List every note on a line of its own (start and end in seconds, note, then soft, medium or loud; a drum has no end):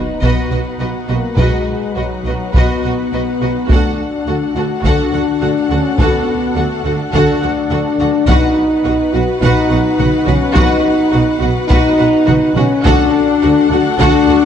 0.00 0.21 D#4 medium
0.00 3.65 D#4 medium
0.00 3.65 F#4 medium
0.00 3.65 B4 medium
0.00 3.65 F#5 medium
0.00 sub drop medium
0.22 0.30 B1 medium
0.22 0.30 B2 medium
0.22 1.07 B3 medium
0.22 0.49 F#4 medium
0.22 0.49 B4 medium
0.22 0.49 D#5 medium
0.22 taiko medium
0.51 0.59 B1 soft
0.51 0.60 B2 soft
0.51 0.59 F#4 soft
0.51 0.59 B4 soft
0.51 0.59 D#5 soft
0.79 0.88 B1 soft
0.79 0.89 B2 soft
0.79 0.88 F#4 soft
0.79 0.87 B4 soft
0.79 0.88 D#5 soft
1.07 1.16 B1 soft
1.07 1.17 B2 soft
1.07 1.37 A#3 medium
1.07 1.17 F#4 soft
1.07 1.16 B4 medium
1.07 1.17 D#5 soft
1.36 1.45 B1 medium
1.36 1.47 B2 medium
1.36 1.96 G#3 medium
1.36 1.65 F#4 medium
1.36 1.64 B4 medium
1.36 1.65 D#5 medium
1.36 taiko medium
1.95 2.04 B1 soft
1.95 2.05 B2 soft
1.95 2.54 F#3 medium
1.95 2.03 F#4 soft
1.95 2.04 B4 soft
1.95 2.05 D#5 soft
2.25 2.33 B1 soft
2.25 2.34 B2 soft
2.25 2.35 F#4 soft
2.25 2.34 B4 soft
2.25 2.34 D#5 soft
2.54 2.63 B1 medium
2.54 2.63 B2 medium
2.54 3.69 B3 medium
2.54 2.82 F#4 medium
2.54 2.81 B4 medium
2.54 2.82 D#5 medium
2.54 taiko medium
2.84 2.92 B1 soft
2.84 2.92 B2 soft
2.84 2.92 F#4 soft
2.84 2.92 B4 soft
2.84 2.92 D#5 soft
3.12 3.20 B1 soft
3.12 3.21 B2 soft
3.12 3.21 F#4 soft
3.12 3.21 B4 soft
3.12 3.21 D#5 soft
3.41 3.49 B1 soft
3.41 3.50 B2 soft
3.41 3.50 F#4 soft
3.41 3.51 B4 soft
3.41 3.50 D#5 soft
3.68 3.77 D2 medium
3.68 3.79 D3 medium
3.68 4.53 D4 medium
3.68 8.29 D4 medium
3.68 3.97 F#4 medium
3.68 8.25 F#4 medium
3.68 3.97 A4 medium
3.68 3.97 F#5 medium
3.68 taiko medium
3.72 8.30 A4 medium
3.72 8.26 F#5 medium
4.26 4.34 D2 soft
4.26 4.36 D3 soft
4.26 4.35 F#4 soft
4.26 4.36 A4 soft
4.26 4.36 F#5 soft
4.55 4.63 D2 soft
4.55 4.64 D3 soft
4.55 4.85 F#4 medium
4.55 4.64 F#4 soft
4.55 4.65 A4 soft
4.55 4.64 F#5 soft
4.83 4.91 D2 medium
4.83 4.93 D3 medium
4.83 5.69 D4 medium
4.83 5.11 F#4 medium
4.83 5.12 A4 medium
4.83 5.11 F#5 medium
4.83 taiko medium
5.12 5.20 D2 soft
5.12 5.21 D3 soft
5.12 5.21 F#4 soft
5.12 5.21 A4 soft
5.12 5.22 F#5 soft
5.41 5.49 D2 soft
5.41 5.50 D3 soft
5.41 5.49 F#4 medium
5.41 5.50 A4 soft
5.41 5.50 F#5 soft
5.70 5.78 D2 soft
5.70 5.79 D3 soft
5.70 5.99 C#4 medium
5.70 5.78 F#4 soft
5.70 5.79 A4 medium
5.70 5.79 F#5 soft
5.98 6.06 D2 medium
5.98 6.06 D3 medium
5.98 6.56 B3 medium
5.98 6.26 F#4 medium
5.98 6.26 A4 medium
5.98 6.26 F#5 medium
5.98 taiko medium
6.55 6.63 D2 soft
6.55 6.64 D3 soft
6.55 6.97 A3 medium
6.55 6.64 F#4 soft
6.55 6.65 A4 soft
6.55 6.65 F#5 soft
6.85 6.93 D2 soft
6.85 6.93 D3 soft
6.85 6.93 F#4 soft
6.85 6.94 A4 soft
6.85 6.93 F#5 soft
7.13 7.21 D2 medium
7.13 7.23 D3 medium
7.13 8.26 D4 medium
7.13 7.40 F#4 medium
7.13 7.41 A4 medium
7.13 7.41 F#5 medium
7.13 taiko medium
7.42 7.51 D2 medium
7.42 7.51 D3 soft
7.42 7.50 F#4 soft
7.42 7.52 A4 soft
7.42 7.50 F#5 soft
7.70 7.79 D2 medium
7.70 7.80 D3 soft
7.70 7.78 F#4 medium
7.70 7.81 A4 medium
7.70 7.79 F#5 medium
7.99 8.08 D2 medium
7.99 8.08 D3 medium
7.99 8.07 F#4 medium
7.99 8.08 A4 medium
7.99 8.08 F#5 medium
8.27 8.36 B1 medium
8.27 8.36 B2 medium
8.27 12.85 B3 medium
8.27 9.13 D#4 medium
8.27 12.81 F#4 medium
8.27 8.55 F#4 medium
8.27 12.85 B4 medium
8.27 8.55 B4 medium
8.27 8.55 F#5 medium
8.27 12.82 F#5 medium
8.27 taiko medium
8.84 8.93 B1 medium
8.84 8.94 B2 medium
8.84 8.93 F#4 soft
8.84 8.92 B4 medium
8.84 8.93 F#5 medium
9.13 9.22 B1 medium
9.13 9.22 B2 medium
9.13 9.42 F#4 medium
9.13 9.23 F#4 soft
9.13 9.21 B4 soft
9.13 9.22 F#5 soft
9.41 9.51 B1 medium
9.41 9.50 B2 medium
9.41 10.26 D#4 medium
9.41 9.68 F#4 medium
9.41 9.69 B4 medium
9.41 9.70 F#5 medium
9.41 taiko medium
9.70 9.79 B1 medium
9.70 9.79 B2 medium
9.70 9.78 F#4 medium
9.70 9.78 B4 medium
9.70 9.79 F#5 medium
9.98 10.07 B1 medium
9.98 10.09 B2 medium
9.98 10.06 F#4 medium
9.98 10.08 B4 medium
9.98 10.07 F#5 medium
9.98 taiko mid medium
10.25 10.35 B1 medium
10.25 10.56 C#4 medium
10.25 10.33 F#4 medium
10.25 10.36 B4 medium
10.25 10.36 F#5 medium
10.25 taiko mid soft
10.29 10.37 B2 medium
10.54 10.63 B1 medium
10.54 10.65 B2 medium
10.54 11.41 D#4 loud
10.54 10.82 F#4 medium
10.54 10.84 B4 medium
10.54 10.83 F#5 medium
10.54 taiko loud
11.12 11.21 B1 medium
11.12 11.23 B2 medium
11.12 11.20 F#4 medium
11.12 11.21 B4 medium
11.12 11.21 F#5 medium
11.39 11.50 B1 medium
11.39 11.69 F#4 medium
11.39 11.49 F#4 medium
11.39 11.50 B4 medium
11.39 11.50 F#5 medium
11.43 11.51 B2 medium
11.68 11.78 B1 medium
11.68 12.53 D#4 loud
11.68 11.97 F#4 medium
11.68 11.98 B4 medium
11.68 11.97 F#5 medium
11.68 taiko medium
11.72 11.80 B2 medium
11.98 12.07 B1 medium
11.98 12.08 B2 medium
11.98 12.06 F#4 medium
11.98 12.07 B4 medium
11.98 12.06 F#5 medium
12.26 12.35 B1 medium
12.26 12.37 B2 medium
12.26 12.34 F#4 medium
12.26 12.36 B4 medium
12.26 12.35 F#5 medium
12.26 taiko mid medium
12.55 12.64 B1 medium
12.55 12.66 B2 medium
12.55 12.84 C#4 medium
12.55 12.64 F#4 medium
12.55 12.64 B4 medium
12.55 12.64 F#5 medium
12.55 taiko mid medium
12.84 12.93 D2 medium
12.84 12.95 D3 medium
12.84 13.71 D4 loud
12.84 14.45 D4 medium
12.84 13.11 F#4 medium
12.84 14.45 F#4 medium
12.84 13.11 A4 medium
12.84 14.45 A4 medium
12.84 14.45 F#5 medium
12.84 13.12 F#5 medium
12.84 taiko loud
13.42 13.51 D2 medium
13.42 13.52 D3 medium
13.42 13.50 F#4 medium
13.42 13.50 A4 medium
13.42 13.50 F#5 medium
13.70 13.79 D2 medium
13.70 13.81 D3 medium
13.70 14.00 F#4 loud
13.70 13.80 F#4 medium
13.70 13.78 A4 soft
13.70 13.80 F#5 medium
13.99 14.08 D2 medium
13.99 14.09 D3 medium
13.99 14.45 D4 loud
13.99 14.27 F#4 medium
13.99 14.27 A4 medium
13.99 14.27 F#5 medium
13.99 taiko medium
14.29 14.37 D2 medium
14.29 14.38 D3 medium
14.29 14.37 F#4 medium
14.29 14.37 A4 medium
14.29 14.37 F#5 medium